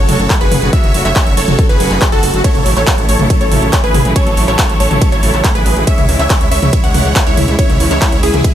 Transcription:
0.00 A4 C#5
0.09 F#1 C#3 F#3 A3 F#4, open hi-hat, mid tom
0.19 F#1, closed hi-hat
0.30 C#3 F#3 A3 F#4, kick, clap, closed hi-hat
0.41 F#1 C#3 F#3 A3 F#4 G#4 B4, closed hi-hat
0.52 F#1, open hi-hat, mid tom
0.62 F#1 C#3 F#3 A3 F#4, closed hi-hat
0.73 C#3 F#3 A3 F#4 C#5 E5, kick, closed hi-hat
0.84 F#1, closed hi-hat
0.94 F#1 C#3 F#3 A3 F#4, open hi-hat
1.05 F#1 C#5 E5, clap, closed hi-hat
1.16 C#3 F#3 A3 F#4, kick, clap, closed hi-hat
1.27 F#1 C#3 F#3 A3 F#4, closed hi-hat
1.37 F#1 A4 C#5, open hi-hat
1.48 F#1 C#3 F#3 A3 F#4, closed hi-hat, mid tom
1.59 C#3 F#3 A3 F#4, kick, closed hi-hat
1.69 F#1 G#4 B4, closed hi-hat
1.80 F#1 C#3 F#3 A3 F#4, open hi-hat
1.91 F#1, clap, closed hi-hat
2.02 C#3 F#3 A3 F#4, kick, clap, closed hi-hat
2.12 F#1 C#3 F#3 A3 F#4 A4, closed hi-hat
2.23 F#1, open hi-hat
2.34 F#1 C#3 F#3 A3 F#4, closed hi-hat
2.44 C#3 F#3 A3 E4 A4 C#5, kick, closed hi-hat, ride
2.55 A1, closed hi-hat, mid tom
2.66 A1 C#3 F#3 A3 E4, open hi-hat
2.77 A1 A4 C#5, clap, closed hi-hat
2.87 C#3 F#3 A3 E4, kick, clap, closed hi-hat, ride
2.98 A1 C#3 F#3 A3 E4, closed hi-hat
3.09 A1 A4 C#5, open hi-hat
3.19 A1 C#3 F#3 A3 E4, closed hi-hat, mid tom
3.30 C#3 F#3 A3 E4, kick, closed hi-hat, ride
3.41 A1 A4 C#5, closed hi-hat
3.52 A1 C#3 F#3 A3 E4, open hi-hat, mid tom
3.62 A1, closed hi-hat
3.73 C#3 F#3 A3 E4, kick, clap, closed hi-hat, ride
3.84 A1 C#3 F#3 A3 E4 G#4 B4, closed hi-hat
3.94 A1, open hi-hat, mid tom
4.05 A1 C#3 F#3 A3 E4, closed hi-hat
4.16 C#3 F#3 A3 E4 A4 C#5, kick, closed hi-hat, ride
4.27 A1, closed hi-hat
4.37 A1 C#3 F#3 A3 E4, open hi-hat
4.48 A1 A4 C#5, clap, closed hi-hat
4.59 C#3 F#3 A3 E4, kick, clap, closed hi-hat, ride
4.69 A1 C#3 F#3 A3 E4, closed hi-hat
4.80 A1 A4 C#5, open hi-hat
4.91 A1 C#3 F#3 A3 E4, closed hi-hat, mid tom
5.01 C#3 F#3 A3 E4, kick, closed hi-hat, ride
5.12 A1 A4 C#5, closed hi-hat
5.23 A1 C#3 F#3 A3 E4, open hi-hat
5.34 A1, clap, closed hi-hat
5.44 C#3 F#3 A3 E4, kick, clap, closed hi-hat, ride
5.55 A1 C#3 F#3 A3 E4 G#4 B4, closed hi-hat
5.66 A1, open hi-hat
5.76 A1 C#3 F#3 A3 E4, closed hi-hat
5.87 C#3 E3 G#3 E4 C#5 E5, kick, closed hi-hat, ride
5.98 C#2, closed hi-hat, mid tom
6.09 C#2 C#3 E3 G#3 E4, open hi-hat
6.19 C#2 C#5 E5, clap, closed hi-hat
6.30 C#3 E3 G#3 E4, kick, clap, closed hi-hat, ride
6.41 C#2 C#3 E3 G#3 E4, closed hi-hat
6.51 C#2 C#5 E5, open hi-hat
6.62 C#2 C#3 E3 G#3 E4, closed hi-hat, mid tom
6.73 C#3 E3 G#3 E4, kick, closed hi-hat, ride
6.84 C#2 C#5 F#5, closed hi-hat
6.94 C#2 C#3 E3 G#3 E4, open hi-hat, mid tom
7.05 C#2, closed hi-hat
7.16 C#3 E3 G#3 E4, kick, clap, closed hi-hat, ride
7.26 C#2 C#3 E3 G#3 E4 C#5, closed hi-hat
7.37 C#2, open hi-hat, mid tom
7.48 C#2 C#3 E3 G#3 E4, closed hi-hat
7.59 C#3 E3 G#3 E4 C#5, kick, closed hi-hat, ride
7.69 C#2, closed hi-hat, mid tom
7.80 C#2 C#3 E3 G#3 E4, open hi-hat
7.91 C#2 E4 C#5, clap, closed hi-hat
8.02 C#3 E3 G#3 E4, kick, clap, closed hi-hat, ride
8.12 C#2 C#3 E3 G#3 E4, closed hi-hat
8.23 C#2 E4 G#4, open hi-hat
8.34 C#2 C#3 E3 G#3 E4, closed hi-hat, mid tom
8.44 C#3 E3 G#3 E4, kick, closed hi-hat, ride

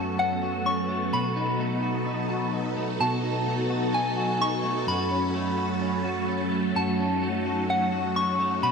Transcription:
Already playing: F#2 F#3 A3 B3 C#4 F#4 A4 A5
0.18 C#4 F#5
0.42 F#4
0.65 C#4 C#6
0.89 A3
1.12 B2 D#4 F#4 B5
1.36 D#4
1.59 A3
1.82 F#4
2.06 D#4
2.29 F#4
2.53 D#4
2.76 A3
3.00 B2 F#4 A5
3.23 D#4
3.46 A3
3.69 F#4
3.93 D#4 G#5
4.16 F#4
4.40 D#4 C#6
4.63 A3
4.87 F#2 A3 C#4 F#4 B5
5.10 C#4
5.34 A3
5.57 F#4
5.81 C#4
6.04 F#4
6.28 C#4
6.51 A3
6.75 F#2 D#4 F#4 A5
6.98 C#4
7.22 A3
7.45 F#4
7.68 C#4 F#5
7.92 F#4
8.16 C#4 C#6
8.39 A3
8.62 B2 B3 D#4 F#4 B5

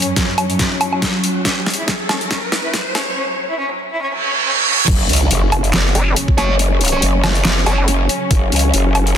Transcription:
Already playing: F#2 F#3 C#4, riser
0.02 closed hi-hat
0.07 F#2
0.16 F#3, kick, snare, closed hi-hat
0.28 F#2
0.38 F#3, closed hi-hat, low woodblock
0.50 F#2, closed hi-hat
0.59 F#2, kick, snare, closed hi-hat
0.71 F#3
0.81 closed hi-hat, low woodblock
0.93 low woodblock
1.02 kick, snare, closed hi-hat
1.24 closed hi-hat
1.45 C#4, kick, snare, closed hi-hat
1.57 F#3
1.66 F#3, snare, closed hi-hat
1.70 closed hi-hat
1.74 closed hi-hat
1.78 E4
1.88 F#3, kick, snare, closed hi-hat
2.00 F#3
2.09 C#4, snare, closed hi-hat, low woodblock
2.21 F#3, closed hi-hat
2.31 C#4, kick, snare, closed hi-hat
2.43 F#3
2.52 F#3, snare, closed hi-hat
2.64 E4
2.74 F#3, kick, snare, closed hi-hat
2.85 F#3
2.95 C#4, snare, closed hi-hat, low woodblock
3.07 F#3
3.16 C#4
3.28 F#3
3.38 F#3
3.50 E4
3.59 C#4
3.71 F#3
3.81 F#3
3.93 E4
4.02 C#4, reverse cymbal
4.14 F#3
4.24 C#4
4.35 F#3
4.45 C#4
4.57 F#3
4.66 C#4
4.78 F#3
4.88 F#1 C#3 F#3 C#4, kick, closed hi-hat, crash, impact
5.09 C#2, closed hi-hat
5.13 closed hi-hat
5.16 closed hi-hat
5.31 F#1, closed hi-hat
5.52 closed hi-hat, low woodblock
5.64 closed hi-hat
5.74 F#1, snare, clap, closed hi-hat
5.95 F#1, closed hi-hat
6.16 closed hi-hat
6.28 kick
6.38 F#1 C#4 F#4 C#5, closed hi-hat, low woodblock
6.59 closed hi-hat
6.81 closed hi-hat
6.85 closed hi-hat
6.88 closed hi-hat
6.92 C#4 F#4 C#5
7.02 F#1, closed hi-hat
7.24 snare, closed hi-hat, low woodblock
7.35 closed hi-hat
7.45 F#1, snare, clap, closed hi-hat
7.66 F#1 C#4 F#4 C#5, closed hi-hat, low woodblock
7.78 low woodblock
7.88 F#1, closed hi-hat
8.09 closed hi-hat
8.31 F#1, kick, closed hi-hat
8.52 C#2, closed hi-hat
8.56 closed hi-hat
8.59 closed hi-hat
8.74 F#1, closed hi-hat
8.95 closed hi-hat, low woodblock
9.07 closed hi-hat

